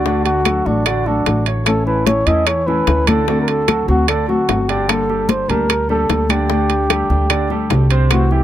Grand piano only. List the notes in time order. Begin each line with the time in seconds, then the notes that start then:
0.06 D3 D4 D5
0.46 F#3 F#4 A4
0.86 D3 D4 D5
1.06 F#3 F#4 A4
1.48 C#5
1.87 E3 E4 A4
2.27 E3 E4 A4
2.68 E3 E4 A4
3.08 D3 D4 D5
3.28 D3 D4 D5
3.68 F#3 F#4 A4
4.09 D3 D4 D5
4.29 F#3 F#4 A4
4.69 D3 D4 D5
5.09 G3 G4 A4
5.50 G3 G4 A5
5.90 G3 G4 A4
6.30 D3 D4 D5
6.50 D3 D4 D5
6.90 G3 G4 A4
7.30 D3 D4 D5
7.51 G3 G4 A4
7.91 C3 C4 C5
8.31 E3 E4 G4